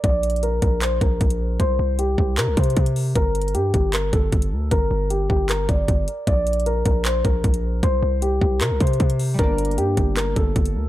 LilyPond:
<<
  \new Staff \with { instrumentName = "Grand piano" } { \time 4/4 \key g \minor \tempo 4 = 154 d''4 bes'8 bes'8 c''8 bes'4. | c''4 g'8 g'8 bes'8 c''4. | bes'4 g'8 g'8 bes'8 a'4. | bes'4 g'8 g'8 bes'8 d''4. |
d''4 bes'8 bes'8 c''8 bes'4. | c''4 g'8 g'8 bes'8 c''4. | bes'4 g'8 g'8 bes'8 a'4. | }
  \new Staff \with { instrumentName = "Harp" } { \time 4/4 \key g \minor r1 | r1 | r1 | r1 |
r1 | r1 | <g bes d'>1 | }
  \new Staff \with { instrumentName = "808-style bass" } { \clef bass \time 4/4 \key g \minor bes,,4. bes,,4 bes,,8 bes,,4 | c,8 c,4 c,8 c16 c,16 c8 c4 | g,,4 g,8 g,,4 g,,8 g,,8 d,8 | g,,8 g,,4 g,,4 g,,8 g,,8 r8 |
bes,,4. bes,,4 bes,,8 bes,,4 | c,8 c,4 c,8 c16 c,16 c8 c4 | g,,4 g,8 g,,4 g,,8 g,,8 d,8 | }
  \new DrumStaff \with { instrumentName = "Drums" } \drummode { \time 4/4 \tuplet 3/2 { <hh bd>16 r16 r16 hh16 hh16 hh16 } hh8 <hh bd>8 <hc hh>8 <hh bd>8 <hh bd>16 hh8. | <hh bd>4 hh8 bd8 \tuplet 3/2 { <hc hh>16 r16 r16 <hh bd>16 hh16 hh16 } <hh bd>16 hh16 hho8 | \tuplet 3/2 { <hh bd>16 r16 r16 hh16 hh16 hh16 } hh8 <hh bd>8 <hc hh>8 <hh bd>8 <hh bd>16 hh8. | <hh bd>4 hh8 bd8 <hc hh>8 <hh bd>8 <hh bd>8 hh8 |
\tuplet 3/2 { <hh bd>16 r16 r16 hh16 hh16 hh16 } hh8 <hh bd>8 <hc hh>8 <hh bd>8 <hh bd>16 hh8. | <hh bd>4 hh8 bd8 \tuplet 3/2 { <hc hh>16 r16 r16 <hh bd>16 hh16 hh16 } <hh bd>16 hh16 hho8 | \tuplet 3/2 { <hh bd>16 r16 r16 hh16 hh16 hh16 } hh8 <hh bd>8 <hc hh>8 <hh bd>8 <hh bd>16 hh8. | }
>>